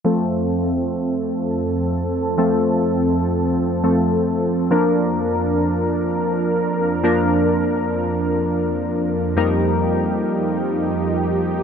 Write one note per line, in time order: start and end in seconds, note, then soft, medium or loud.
0.05 4.67 F2 medium
0.05 2.34 F3 medium
0.05 11.63 F3 medium
0.05 2.34 A3 medium
0.05 4.67 C4 medium
0.05 2.34 C4 medium
0.05 4.67 A4 medium
0.05 2.34 A4 medium
2.37 3.80 F3 medium
2.37 3.81 A3 medium
2.37 3.81 C4 medium
2.37 3.81 A4 medium
3.83 4.69 F3 medium
3.83 4.71 A3 medium
3.83 4.71 C4 soft
3.83 4.71 A4 medium
4.71 11.63 F2 medium
4.71 7.00 F3 medium
4.71 7.00 A#3 medium
4.71 9.33 D4 medium
4.71 7.00 D4 medium
4.71 9.33 A#4 medium
4.71 7.00 A#4 medium
7.03 9.33 F3 medium
7.03 9.33 A#3 medium
7.03 9.33 D4 medium
7.03 9.33 A#4 medium
9.37 11.63 F2 medium
9.37 11.63 G3 medium
9.37 11.63 A#3 medium
9.37 11.63 D#4 medium
9.37 11.63 G4 medium
9.37 11.63 A#4 medium